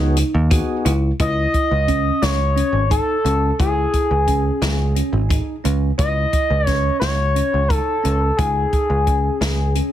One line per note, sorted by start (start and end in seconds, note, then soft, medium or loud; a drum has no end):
0.00 0.22 C#2 medium
0.00 0.18 B3 medium
0.00 0.18 D#4 medium
0.00 0.33 D#4 medium
0.00 0.18 F#4 medium
0.00 0.18 G#4 medium
0.17 closed hi-hat medium
0.34 0.60 D#2 medium
0.50 0.93 B3 medium
0.50 0.93 D#4 medium
0.50 0.76 F#4 medium
0.50 0.93 F#4 medium
0.50 0.93 G#4 medium
0.50 kick loud
0.50 closed hi-hat medium
0.85 1.11 C#2 medium
0.85 1.10 E4 medium
0.85 closed hi-hat medium
1.19 1.46 C#2 medium
1.19 1.70 E4 medium
1.19 2.23 D#5 loud
1.19 kick medium
1.19 closed hi-hat medium
1.54 kick medium
1.54 closed hi-hat soft
1.71 2.10 C#2 medium
1.87 2.38 C#4 medium
1.87 kick medium
1.87 closed hi-hat medium
2.22 2.61 C#2 medium
2.22 2.90 C#5 medium
2.22 snare medium
2.22 closed hi-hat medium
2.56 2.81 C#4 medium
2.56 closed hi-hat soft
2.72 2.99 G#1 medium
2.90 3.15 D#4 medium
2.90 3.55 A4 medium
2.90 kick medium
2.90 closed hi-hat medium
3.24 3.51 C#2 medium
3.24 3.50 C#4 medium
3.24 closed hi-hat medium
3.59 3.85 C#2 medium
3.59 4.10 E4 medium
3.59 4.92 G#4 medium
3.59 kick medium
3.59 closed hi-hat medium
3.94 kick medium
3.94 closed hi-hat medium
4.11 4.49 C#2 medium
4.27 4.78 C#4 medium
4.27 kick medium
4.27 closed hi-hat medium
4.62 5.00 C#2 medium
4.62 snare medium
4.62 closed hi-hat medium
4.95 5.21 C#4 medium
4.95 closed hi-hat medium
5.13 5.39 G#1 medium
5.29 5.55 D#4 medium
5.29 kick loud
5.29 closed hi-hat medium
5.64 5.91 C#2 medium
5.64 5.89 C#4 medium
5.64 closed hi-hat medium
5.98 6.25 C#2 medium
5.98 6.49 E4 medium
5.98 6.67 D#5 loud
5.98 kick medium
5.98 closed hi-hat medium
6.33 kick medium
6.33 closed hi-hat medium
6.50 6.89 C#2 medium
6.67 7.17 C#4 medium
6.67 6.97 C#5 loud
6.67 kick medium
6.67 snare soft
6.67 closed hi-hat soft
7.00 7.40 C#2 medium
7.00 7.70 C#5 loud
7.00 snare medium
7.00 closed hi-hat medium
7.35 7.61 C#4 medium
7.35 closed hi-hat medium
7.54 7.79 C#2 medium
7.68 7.95 D#4 medium
7.68 8.38 A4 loud
7.68 kick loud
7.68 closed hi-hat medium
8.03 8.30 C#2 medium
8.03 8.29 C#4 medium
8.03 closed hi-hat soft
8.37 8.64 C#2 medium
8.37 8.89 D#4 medium
8.37 9.74 G#4 medium
8.37 kick loud
8.37 closed hi-hat medium
8.73 kick medium
8.73 closed hi-hat soft
8.90 9.29 C#2 medium
9.07 9.57 C#4 medium
9.07 kick medium
9.07 closed hi-hat medium
9.41 9.80 C#2 medium
9.41 snare medium
9.41 closed hi-hat medium
9.75 9.92 C#4 medium
9.75 closed hi-hat medium